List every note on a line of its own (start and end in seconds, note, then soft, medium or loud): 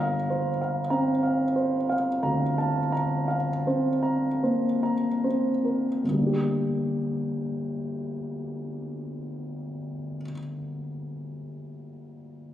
0.00 6.00 G1 medium
0.00 0.48 F5 soft
0.00 0.16 A#5 medium
0.30 0.79 C5 soft
0.62 1.11 F5 soft
0.90 1.94 C4 soft
0.90 1.42 A#5 soft
1.23 1.75 F5 soft
1.56 2.08 C5 soft
1.89 2.42 F5 soft
2.23 3.35 D2 soft
2.23 2.77 A#5 soft
2.58 2.92 A5 soft
2.92 3.49 A#5 soft
3.28 3.87 F5 soft
3.67 4.91 C4 soft
3.67 4.27 C5 soft
4.03 4.65 A#5 soft
4.43 5.25 A#3 soft
4.43 5.08 C5 soft
4.83 5.50 A#5 soft
5.24 6.03 C4 soft
5.24 5.88 C5 soft
5.65 6.03 A#4 soft
6.04 10.15 G1 soft
6.09 10.20 D2 soft
6.13 10.25 G3 soft
6.18 10.30 A#3 soft
6.18 10.34 D4 soft
6.27 10.38 G4 soft